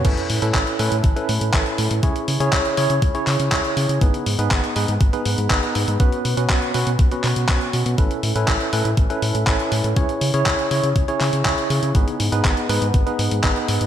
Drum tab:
CC |x---------------|----------------|----------------|----------------|
HH |xxoxxxoxxxoxxxox|xxoxxxoxxxoxxxox|xxoxxxoxxxoxxxox|xxoxxxoxxxoxxxox|
CP |----x-------x---|----x-----x-x---|----x-------x---|----x-----x-x---|
BD |o---o---o---o---|o---o---o---o---|o---o---o---o---|o---o---o---o---|

CC |----------------|----------------|----------------|
HH |xxoxxxoxxxoxxxox|xxoxxxoxxxoxxxox|xxoxxxoxxxoxxxox|
CP |----x-------x---|----x-----x-x---|----x-------x---|
BD |o---o---o---o---|o---o---o---o---|o---o---o---o---|